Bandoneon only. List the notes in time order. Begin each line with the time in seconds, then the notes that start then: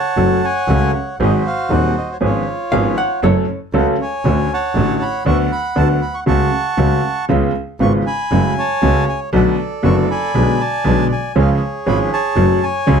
Already playing: C#5 F#5 A5
0.44 C#5 G#5
0.95 F#5
1.21 F#4 C5 D#5
1.47 F5
1.72 F#5
1.98 D#5
2.12 C#5
2.24 F4 C#5
3.77 F#5
4.01 C#5 G#5
4.53 C#5 F#5 A5
5.02 B5
5.27 F#5 C#6
5.52 B5
5.77 A5
6.02 B5
6.14 C#6
6.28 F#5 A5 C#6
7.82 C#6
8.06 G#5 B5
8.58 C#5 A5
9.09 G#5
9.34 A4 D5 F#5
9.85 C#6
10.10 D5 G#5 B5
10.60 D5 A5
11.12 G#5
11.39 G#4 C#5 F5
11.88 B5
12.13 C#5 A5
12.63 C#5 G#5